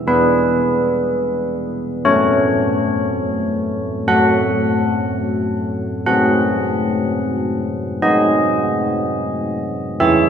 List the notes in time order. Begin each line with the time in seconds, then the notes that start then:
0.07 E3 B3 G#4 B4
2.05 F#3 A3 A4 C#5
4.07 F#3 A3 A4 F#5
6.06 F#3 C4 G#4 F#5
8.02 F#3 C4 G#4 D#5
10.00 E3 C#4 G#4 E5